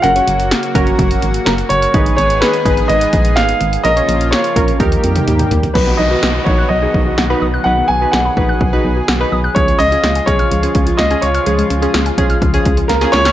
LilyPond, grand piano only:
\new Staff \with { instrumentName = "Grand piano" } { \time 4/4 \key b \lydian \tempo 4 = 126 fis''4 r2 ais'8 cis''8~ | cis''8 cis''8 b'4 dis''4 eis''4 | dis''4 cis''4 r2 | b'8 dis''4 cis''8 dis''2 |
fis''8 gis''8 fis''2~ fis''8 r8 | cis''8 dis''4 cis''4. dis''8 cis''8~ | cis''2. ais'8 cis''8 | }